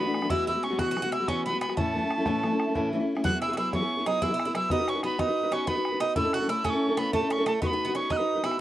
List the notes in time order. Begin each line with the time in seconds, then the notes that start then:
Already playing: B3 B5
0.00 F#4
0.06 E3 A3 D4 F#4
0.14 bodhran
0.21 E3 A3 D4 F#4, bodhran
0.30 E3 G#3 B3 E4 F#4 E6, bodhran
0.47 E3 G#3 B3 E4 F#4 E6, bodhran
0.55 G#3 B3 F#4
0.63 C#4 C#6, bodhran
0.70 G#3 B3 F#4
0.78 E3 G#3 B3 F#4 F#6, bodhran
0.91 F#4
0.96 E3 G#3 B3 F#4, bodhran
1.02 B3 F#4
1.06 G#3
1.12 E4 E6, bodhran
1.20 G#3 B3 F#4
1.28 E3 G#3 B3 C#4 F#4 C#6, bodhran
1.45 E3 G#3 B3 F#4 B5
1.54 G#3 B3 F#4
1.61 B3 B5, bodhran
1.69 G#3 B3 F#4, bodhran
1.77 A2 E3 A3 C#4 E4 A5, bodhran
1.94 E3 A3 C#4 E4, bodhran
2.02 A3 C#4 E4
2.11 bodhran
2.18 A3 C#4 E4
2.26 A2 E3 A3 C#4 E4, bodhran
2.43 E3 A3 C#4 E4, bodhran
2.51 A3 C#4 E4
2.60 bodhran
2.67 A3 C#4 E4
2.75 A2 E3 A3 C#4 E4, bodhran
2.92 E3 A3 C#4 E4
3.00 A3 C#4 E4
3.15 A3 C#4 E4, bodhran
3.23 E3 F#3 B3 E4 F#4 G#4 F#6, bodhran
3.32 B3 E4 G#4
3.42 E4 E6, bodhran
3.49 B3 E4 G#4
3.53 F#3 F#4, bodhran
3.57 B3 E4 G#4 E6
3.73 E3 F#3 B3 C#4 E4 G#4 C#6, bodhran
3.82 B3 E4 G#4
3.98 B3 E4 G#4
4.06 F#3 B3 D#4 E4 G#4 D#6, bodhran
4.22 E3 F#3 B3 E4 G#4 E6, bodhran
4.30 B3 E4 G#4
4.34 E4
4.40 bodhran
4.45 B3 E4 G#4
4.54 F#3 B3 E4 G#4 E6, bodhran
4.70 B3 D#4 F#4 B4 D#6, bodhran
4.78 D#4 F#4 B4
4.88 C#4 C#6, bodhran
4.95 D#4 F#4 B4
5.03 B3 D#4 F#4 B4 B5, bodhran
5.18 B3 D#4 F#4 B4 D#6, bodhran
5.27 D#4 F#4 B4
5.43 D#4 F#4 B4
5.51 B3 C#4 D#4 F#4 B4 C#6, bodhran
5.67 B3 D#4 F#4 B4 B5, bodhran
5.75 D#4 F#4 B4
5.85 bodhran
5.92 D#4 F#4 B4
6.00 B3 D#4 F#4 B4 D#6, bodhran
6.16 A2 A3 C#4 E4 A4 E6, bodhran
6.24 C#4 E4 A4
6.33 F#4 F#6, bodhran
6.40 C#4 E4 A4
6.48 A3 C#4 E4 A4 E6, bodhran
6.64 A2 A3 C#4 E4 A4 D#6, bodhran
6.70 A4 C#6
6.74 C#4 E4
6.89 C#4 E4 A4
6.97 A3 B3 C#4 E4 A4 B5, bodhran
7.13 A2 A3 C#4 E4 A4 A5, bodhran
7.21 C#4 E4 A4
7.30 C#4 C#6, bodhran
7.38 C#4 E4 A4
7.46 A3 C#4 E4 A4 A5, bodhran
7.61 B3 D#4 F#4 B4 C#6, bodhran
7.67 B4 B5
7.72 B3 D#4 F#4
7.85 B3 F#4 B4
7.89 D#4
7.95 B3 C#4 D#4 F#4 B4 C#6, bodhran
8.10 B3 D#4 F#4 B4 F#6, bodhran
8.17 D#4 F#4 B4 D#6
8.35 D#4 F#4 B4
8.43 B3 D#4 E4 F#4 B4 E6, bodhran
8.51 bodhran